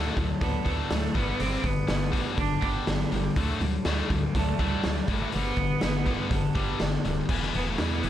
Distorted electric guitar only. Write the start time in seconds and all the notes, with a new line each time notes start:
Already playing: D3 F#3 A3
0.17 D3 F#3
0.41 D3 F#3
0.65 D3 F#3 A3
0.90 D3 F#3
1.15 G2 D3 G3
1.39 G2 D3 G3
1.63 G2 D3
1.87 G2 D3
2.12 G2 D3 G3
2.37 G2 D3
2.61 G2 D3 G3
2.87 G2 D3
3.12 G2 D3
3.36 D3 F#3 A3
3.61 D3 F#3
3.85 D3 F#3 A3
4.10 D3 F#3
4.35 D3 F#3
4.59 D3 F#3 A3
4.83 D3 F#3
5.08 G2 D3 G3
5.33 G2 D3 G3
5.58 G2 D3
5.82 G2 D3
6.06 G2 D3 G3
6.31 G2 D3
6.55 G2 D3 G3
6.80 G2 D3
7.05 G2 D3
7.29 E3 G3 B3 E4
7.78 E3 G3 B3 E4
8.02 E3 G3 B3 E4